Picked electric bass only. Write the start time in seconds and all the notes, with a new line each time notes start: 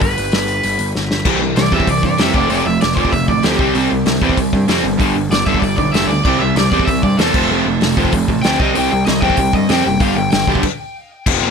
0.02 G1
0.18 G1
0.33 G1
0.64 G1
0.80 G1
0.96 G1
1.26 C2
1.41 C2
1.57 C2
1.72 E2
1.88 C2
2.03 G2
2.19 F2
2.34 F1
2.50 F1
2.66 F1
2.82 F1
2.97 F1
3.13 F1
3.29 A1
3.45 D2
3.60 C2
3.75 C2
3.92 C2
4.06 C2
4.22 E2
4.37 C2
4.53 G2
4.68 F2
4.84 G1
5.00 G1
5.16 G1
5.30 G1
5.47 G1
5.62 G1
5.78 B1
5.93 F1
6.07 D2
6.25 C2
6.39 C2
6.55 C2
6.72 E2
6.87 C2
7.04 G2
7.18 E2
7.35 F1
7.49 F1
7.66 F1
7.81 F1
7.97 F1
8.13 F1
8.29 A1
8.46 D2
8.60 C2
8.76 C2
8.93 C2
9.08 C2
9.22 E2
9.38 C2
9.54 G2
9.70 F2
9.86 F#1
10.00 G1
10.16 G1
10.32 G1
10.47 B1
11.27 F1
11.42 F1